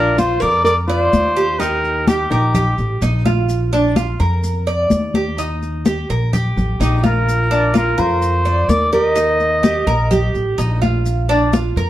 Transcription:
Already playing: A#1 D4 F4 A#4
0.18 F4 C5, high conga, maracas
0.40 F2 A#4 D5, high conga, maracas
0.64 A#4 D5, high conga, maracas
0.88 F4 C5 D5, high conga, maracas
1.13 D#2, high conga, maracas
1.37 G4, maracas
1.59 D#4 G4 A#4, high conga, maracas
1.84 high conga, maracas
2.06 D#4 G4, high conga, maracas
2.30 A#1 D#4 G4 A#4, high conga, maracas
2.55 G4, high conga, low conga, maracas
2.78 A1, high conga, maracas
3.02 A#1 D#4, high conga, maracas
3.26 F4, high conga, maracas
3.49 high conga, maracas
3.73 D4, high conga, maracas
3.96 F4, high conga, maracas
4.20 F2 A#4, high conga, maracas
4.44 high conga, maracas
4.67 D5, high conga, maracas
4.90 D#2, high conga, maracas
5.14 G4, high conga, maracas
5.38 D#4, high conga, maracas
5.62 high conga, maracas
5.86 G4, high conga, maracas
6.09 A#1 A#4, high conga, maracas
6.33 G4, high conga, low conga, maracas
6.57 A1, high conga, low conga, maracas
6.80 A#1 D#4 G4, high conga, maracas
7.03 F4 A#4, high conga, maracas
7.28 high conga, maracas
7.51 D4, high conga, maracas
7.74 F4 A#4, high conga, maracas
7.98 F2 F4 A#4 C5, high conga, maracas
8.22 high conga, maracas
8.45 D5, high conga, maracas
8.68 D#2 A#4 D5, high conga, maracas
8.92 G4 A#4 D#5, maracas
9.16 D#4, high conga, maracas
9.40 high conga, maracas
9.63 G4, high conga, maracas
9.87 A#1 A#4, high conga, maracas
10.11 G4, high conga, low conga, maracas
10.34 A1, high conga, maracas
10.58 A#1 D#4, high conga, maracas
10.82 F4, high conga, maracas
11.06 high conga, maracas
11.29 D4, high conga, maracas
11.53 F4, high conga, maracas
11.76 F2 A#4, high conga, maracas

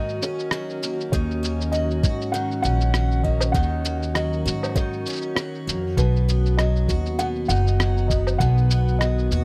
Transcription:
Already playing: G#2 D#3 F#3 A#3 C#4 F#4 A#4 D#5
0.09 cabasa
0.22 C#4 C#5, cabasa
0.39 cabasa
0.51 F#3, cross-stick, cabasa
0.70 cabasa
0.83 A#3, cabasa
1.00 cabasa
1.12 D#2 D#3 C#5, kick, cabasa
1.31 cabasa
1.43 A#3, cabasa
1.61 cabasa
1.72 F#3 D#5, cabasa
1.91 cabasa
2.03 G#2 F#4, kick, cabasa
2.21 cabasa
2.32 D#3 F#5, cabasa
2.51 cabasa
2.62 A#1 C#4 F#5, cabasa
2.81 cabasa
2.94 F#3, cross-stick, cabasa
3.11 cabasa
3.23 A#3 D#5, kick
3.40 cabasa, low woodblock
3.52 D#2 D#3 F#5, kick, cabasa
3.63 cabasa
3.85 A#3, cabasa
4.03 cabasa
4.14 F#3 D#5, cross-stick, cabasa
4.33 cabasa
4.46 G#2 F#4, cabasa
4.63 cabasa, low woodblock
4.65 low woodblock
4.69 low woodblock
4.72 low woodblock
4.74 D#3 C#5, kick, cabasa, low woodblock
4.93 cabasa
5.06 C#4, cabasa
5.09 cabasa
5.12 cabasa
5.16 cabasa
5.17 cabasa
5.22 cabasa
5.35 C#5, cross-stick, cabasa
5.55 cabasa
5.67 F2 A#3, cabasa
5.97 B1 B2 B4, kick, cabasa
6.16 cabasa
6.29 B3, cabasa
6.46 cabasa
6.57 F#3 D#5, cross-stick, cabasa
6.65 B3
6.76 cabasa
6.88 D#2 F#4, kick, cabasa
7.06 cabasa
7.19 B2 F#5, cabasa
7.36 cabasa
7.45 F#1 D#4 F#5, cabasa
7.50 cabasa
7.67 cabasa
7.80 F#3, cross-stick, cabasa
7.90 B4
7.97 cabasa
8.08 B3 D#5, kick, cabasa
8.27 cabasa, low woodblock
8.38 B1 B2 F#5, kick, cabasa
8.58 cabasa
8.70 B3, cabasa
8.88 cabasa
8.99 F#3 D#5, cross-stick, cabasa
9.19 cabasa
9.31 D#2 F#4, cabasa

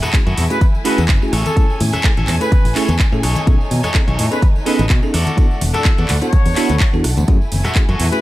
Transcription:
Already playing: A3 E4 G#5
0.02 E4 F#4 G#4 A4, cross-stick, closed hi-hat, tambourine, low conga
0.13 A3 C#4 E4 F#4 G#4, kick, clap, closed hi-hat
0.26 F#2 E4 F#4 G#4 A4, closed hi-hat, tambourine, high conga
0.38 E2, open hi-hat, low conga
0.50 A3 C#4 E4 F#4 G#4 B4, closed hi-hat, tambourine
0.61 muted clean electric guitar stroke, kick, closed hi-hat, tambourine, high conga
0.75 tambourine
0.85 A3 C#4 E4 F#4 G#4 A4 B4, open hi-hat
0.98 E2, closed hi-hat, tambourine, high conga
1.08 F#1, kick, clap, closed hi-hat
1.21 A3 C#4 E4 F#4 G#4, muted clean electric guitar stroke, tambourine
1.33 A1 C#4 E4 G#4 A4 C#5, cross-stick, open hi-hat
1.46 A4, closed hi-hat, tambourine, high conga
1.56 A3 C#4 E4 G#4 A4, kick, closed hi-hat, tambourine
1.70 tambourine
1.80 A2, open hi-hat, high conga
1.93 E4 G#4 A4 E5, cross-stick, closed hi-hat, tambourine, low conga
2.04 A3 C#4 E4 G#4 A4, kick, clap, closed hi-hat
2.17 A1 E4 G#4 A4 E5, closed hi-hat, tambourine, high conga
2.27 E2, clap, open hi-hat, low conga
2.40 A3 C#4 E4 G#4 A4 B4, closed hi-hat, tambourine
2.52 muted clean electric guitar stroke, kick, closed hi-hat, tambourine, high conga
2.65 A1, open hi-hat, tambourine
2.75 A3 C#4 E4 G#4 A4 C#5, clap, open hi-hat
2.88 E2, closed hi-hat, tambourine, high conga
2.99 kick, clap, closed hi-hat, tambourine
3.12 A2 A3 C#4 E4 G#4 A4, muted clean electric guitar stroke, tambourine
3.23 B1 D#4 G#4 A4 C#5, cross-stick, open hi-hat
3.35 closed hi-hat, tambourine, high conga
3.47 B1 B3 C#4 D#4 G#4 A4, kick, closed hi-hat, tambourine
3.61 tambourine
3.71 B2, open hi-hat, high conga
3.84 D#4 G#4 A4 C#5, cross-stick, closed hi-hat, tambourine, low conga
3.94 B3 C#4 D#4 G#4 A4, kick, clap, closed hi-hat, tambourine
4.07 B1 D#4 G#4 A4 C#5, closed hi-hat, tambourine, high conga
4.19 A2, open hi-hat, low conga
4.31 B3 C#4 D#4 G#4 A4 B4, closed hi-hat, tambourine
4.42 muted clean electric guitar stroke, kick, closed hi-hat, tambourine, high conga
4.56 tambourine
4.66 B3 C#4 D#4 G#4 A4 B4 D#5, open hi-hat
4.79 A1, closed hi-hat, tambourine, high conga
4.90 B2, kick, clap, closed hi-hat, tambourine
5.02 B3 C#4 D#4 G#4 A4, muted clean electric guitar stroke, tambourine
5.14 E2 D4 E4 F#4 A4 D5 F#5, cross-stick, open hi-hat
5.27 closed hi-hat, tambourine, high conga
5.37 B3 D4 E4 F#4 A4, kick, closed hi-hat, tambourine
5.51 tambourine
5.61 E1, open hi-hat, high conga
5.73 E4 F#4 A4 D5, cross-stick, closed hi-hat, tambourine, low conga
5.85 B3 D4 E4 F#4 A4, kick, clap, closed hi-hat, tambourine
5.97 E2 E4 F#4 A4 D5, closed hi-hat, tambourine, high conga
6.08 D2, clap, open hi-hat, low conga
6.22 B3 D4 E4 F#4 A4 C#5, closed hi-hat, tambourine
6.32 muted clean electric guitar stroke, kick, closed hi-hat, tambourine, high conga
6.46 E2, open hi-hat, tambourine
6.56 B3 D4 E4 F#4 A4 B4, clap, open hi-hat
6.69 D2, closed hi-hat, tambourine, high conga
6.80 kick, clap, closed hi-hat, tambourine
6.93 E2 B3 D4 E4 F#4 A4, muted clean electric guitar stroke, tambourine
7.04 B1, muted clean electric guitar stroke, cross-stick, open hi-hat
7.17 D2, closed hi-hat, tambourine, high conga
7.28 F#2 A3 C#4 E4 F#4 G#4 G#5, kick, closed hi-hat, tambourine
7.42 tambourine
7.52 F#1, open hi-hat, high conga
7.64 F#4 G#4 A4 E5, cross-stick, closed hi-hat, tambourine, low conga
7.75 A3 C#4 E4 F#4 G#4, kick, clap, closed hi-hat, tambourine
7.88 F#2 F#4 G#4 A4 C#5, closed hi-hat, tambourine, high conga
8.00 E2, open hi-hat, low conga
8.12 A3 C#4 E4 F#4 G#4 B4, closed hi-hat, tambourine

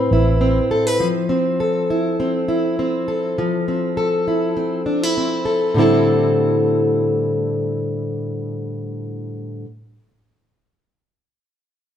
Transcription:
Already playing: A2 C4 E4 B4
0.11 A1 E4
0.41 C4
0.71 A4
0.87 B4
1.00 F3
1.29 C4
1.60 A4
1.90 E4
2.20 C4
2.48 E4
2.79 C4
3.08 A4
3.38 F3
3.68 C4
3.97 A4
4.28 E4
4.57 C4
4.86 D4
5.03 E4
5.17 C4
5.45 A4
5.74 A2 D3 G3 C4
5.79 E4 A4

